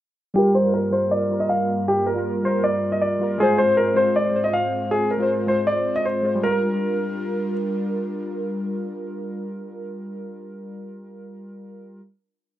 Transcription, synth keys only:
0.34 0.60 G3 loud
0.34 0.61 F4 medium
0.38 0.62 A#4 loud
0.62 0.88 G3 medium
0.62 0.90 F4 medium
0.66 0.91 A#4 medium
0.90 1.25 G3 medium
0.90 1.26 F4 medium
0.95 1.27 A#4 medium
1.29 1.97 G3 medium
1.29 1.98 F4 medium
1.33 2.00 A#4 medium
2.14 2.40 G3 medium
2.14 2.41 F4 medium
2.18 2.42 A#4 medium
2.42 3.11 G3 medium
2.42 3.12 F4 medium
2.47 3.13 A#4 medium
3.19 3.37 G3 medium
3.19 3.38 F4 medium
3.23 3.39 A#4 medium
3.38 3.64 G#3 loud
3.38 3.65 F4 loud
3.42 3.66 C5 loud
3.66 3.93 G#3 medium
3.66 3.94 F4 medium
3.71 3.95 C5 medium
3.94 4.29 G#3 medium
3.94 4.30 F4 medium
3.98 4.31 C5 medium
4.31 5.01 G#3 medium
4.31 5.02 F4 medium
4.36 5.03 C5 medium
5.18 5.44 G#3 medium
5.18 5.45 F4 medium
5.22 5.46 C5 medium
5.46 6.15 G#3 medium
5.46 6.16 F4 medium
5.51 6.17 C5 medium
6.22 6.40 G#3 medium
6.22 6.41 F4 medium
6.26 6.42 C5 medium
6.35 10.75 G3 medium
6.43 10.84 F4 medium
6.52 10.92 A#4 medium

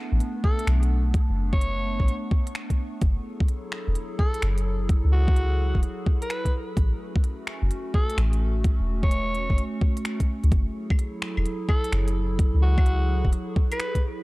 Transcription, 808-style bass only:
0.12 0.20 A1 loud
0.67 1.27 B1 medium
1.29 1.98 F#1 medium
2.00 2.07 A1 loud
3.02 3.16 F#1 loud
3.88 3.95 E1 loud
4.42 5.03 F#1 medium
5.04 5.73 C#2 medium
5.75 5.82 E1 loud
6.77 6.91 A1 medium
7.62 7.70 F#1 loud
8.17 8.78 A1 medium
8.79 9.48 E1 medium
9.50 9.57 F#1 loud
10.44 10.51 C#2 medium
10.52 10.66 F#1 loud
11.37 11.45 E1 loud
11.92 12.53 F#1 medium
12.54 13.23 C#2 medium
13.25 13.32 E1 loud

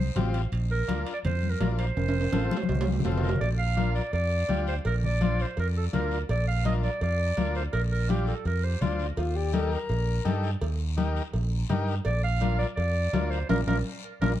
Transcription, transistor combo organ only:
0.16 0.41 C4 medium
0.16 0.42 F4 medium
0.16 0.42 G4 loud
0.88 1.14 D4 medium
0.88 1.14 F4 medium
0.88 1.14 A#4 medium
1.60 1.86 D4 medium
1.60 1.86 F4 medium
1.60 1.86 A#4 medium
2.32 2.58 C4 medium
2.32 2.58 F4 medium
2.32 2.58 A4 medium
3.04 3.30 C4 medium
3.04 3.30 F4 medium
3.04 3.31 A4 medium
3.77 4.02 D4 medium
3.77 4.02 F4 medium
3.77 4.03 A#4 medium
4.49 4.74 D4 medium
4.49 4.74 F4 medium
4.49 4.75 G4 medium
5.21 5.46 D4 medium
5.21 5.47 F4 medium
5.21 5.47 C5 medium
5.93 6.18 D4 medium
5.93 6.19 F4 medium
5.93 6.19 A#4 medium
6.65 6.90 D4 medium
6.65 6.91 F4 medium
6.65 6.91 A#4 medium
7.37 7.63 D4 medium
7.37 7.63 F4 medium
7.37 7.63 A#4 medium
8.09 8.34 D4 medium
8.09 8.35 F4 medium
8.09 8.35 G4 medium
8.81 9.07 D4 medium
8.81 9.07 F4 medium
8.81 9.07 C5 medium
9.53 9.79 D#4 medium
9.53 9.79 G4 medium
9.53 9.79 A#4 medium
10.25 10.50 D#4 medium
10.25 10.51 G4 medium
10.25 10.51 A4 loud
10.97 11.23 D#4 medium
10.97 11.23 G4 medium
10.97 11.23 A#4 medium
11.69 11.95 D#4 medium
11.69 11.95 G4 medium
11.69 11.95 A#4 loud
12.41 12.67 D4 medium
12.41 12.67 F4 medium
12.41 12.67 A#4 medium
13.13 13.39 D4 medium
13.13 13.39 F4 medium
13.13 13.39 A#4 medium
13.49 13.61 D4 loud
13.49 13.61 F4 loud
13.49 13.61 A#4 loud
13.67 13.79 D4 medium
13.67 13.79 F4 loud
13.67 13.79 A#4 loud
14.22 14.34 D4 loud
14.22 14.33 F4 medium
14.22 14.33 A#4 loud

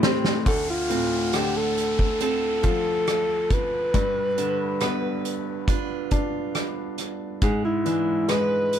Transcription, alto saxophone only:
0.48 0.67 A4 medium
0.70 1.37 F4 medium
1.35 1.59 G4 medium
1.57 2.21 A4 medium
2.23 3.54 A4 medium
3.53 5.26 B4 medium
7.44 7.63 G#4 medium
7.65 8.31 E4 medium
8.29 8.79 B4 medium

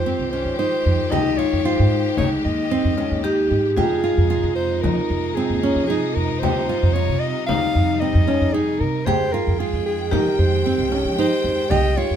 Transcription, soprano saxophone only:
0.00 0.27 C5 loud
0.31 0.56 C5 medium
0.58 1.12 C5 loud
1.11 1.39 D#5 loud
1.37 1.67 C#5 medium
1.65 2.17 C5 loud
2.18 2.30 C#5 medium
2.45 3.47 D#5 medium
3.76 4.52 G#4 medium
4.55 4.83 C5 medium
4.81 5.36 A#4 medium
5.34 5.86 G#4 medium
5.87 6.16 G#4 medium
6.14 6.41 A#4 medium
6.39 6.95 C5 loud
6.93 7.21 C#5 loud
7.19 7.46 D#5 loud
7.46 8.01 F5 loud
8.00 8.55 D#5 loud
8.53 8.81 G#4 medium
8.79 9.07 A#4 medium
9.05 9.34 C5 loud
9.32 9.60 A#4 medium
9.59 9.85 G#4 medium
9.86 10.14 G#4 medium
10.13 10.41 A#4 medium
10.39 10.92 C5 medium
11.20 11.72 C5 loud
11.70 11.98 D#5 loud
11.97 12.16 C#5 loud

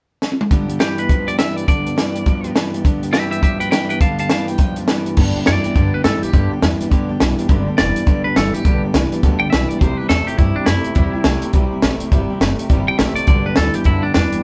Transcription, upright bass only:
5.17 5.35 G2 medium
5.36 muted upright bass stroke medium
5.47 5.64 F#2 loud
5.64 muted upright bass stroke medium
5.76 5.93 G2 medium
5.93 muted upright bass stroke medium
6.04 6.22 G#2 loud
6.23 muted upright bass stroke medium
6.33 6.51 G2 medium
6.51 muted upright bass stroke medium
6.62 6.79 E2 medium
6.80 muted upright bass stroke medium
6.91 7.08 D2 loud
7.10 muted upright bass stroke soft
7.21 7.38 B1 medium
7.39 muted upright bass stroke medium
7.49 7.67 G1 medium
7.67 muted upright bass stroke medium
7.79 7.96 E1 medium
7.96 muted upright bass stroke medium
8.07 8.24 F#1 medium
8.24 muted upright bass stroke soft
8.36 8.54 G1 loud
8.54 muted upright bass stroke medium
8.65 8.82 B1 medium
8.83 muted upright bass stroke medium
8.94 9.11 C2 loud
9.12 muted upright bass stroke medium
9.23 9.40 D2 loud
9.41 muted upright bass stroke medium
9.53 9.70 B1 medium
9.70 muted upright bass stroke medium
9.81 9.98 C2 loud
9.99 muted upright bass stroke medium
10.09 10.27 E2 medium
10.27 muted upright bass stroke medium
10.38 10.55 G2 medium
10.55 muted upright bass stroke medium
10.67 10.84 F#2 medium
10.85 muted upright bass stroke medium
10.96 11.13 E2 medium
11.14 muted upright bass stroke medium
11.24 11.42 C2 loud
11.42 muted upright bass stroke medium
11.53 11.71 B1 loud
11.71 muted upright bass stroke medium
11.82 12.00 A1 loud
12.00 muted upright bass stroke medium
12.12 12.28 G1 medium
12.29 muted upright bass stroke medium
12.40 12.58 F#1 medium
12.58 muted upright bass stroke medium
12.70 12.87 G1 medium
12.87 muted upright bass stroke medium
12.99 13.16 A1 loud
13.16 muted upright bass stroke medium
13.28 13.45 B1 loud
13.45 muted upright bass stroke medium
13.57 13.74 D2 medium
13.75 muted upright bass stroke medium
13.85 14.03 F#2 medium
14.04 muted upright bass stroke medium
14.15 14.32 E2 medium
14.33 muted upright bass stroke medium

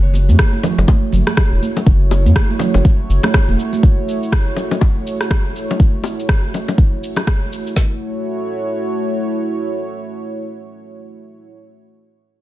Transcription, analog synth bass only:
0.00 0.30 F#1 loud
0.29 0.35 F#2 loud
0.78 0.85 F#1 loud
1.13 1.22 F#1 medium
1.52 1.58 E1 loud
1.86 2.27 F#1 medium
2.25 2.32 F#2 loud
2.75 2.81 F#1 loud
3.09 3.19 F#1 medium
3.48 3.55 E1 loud

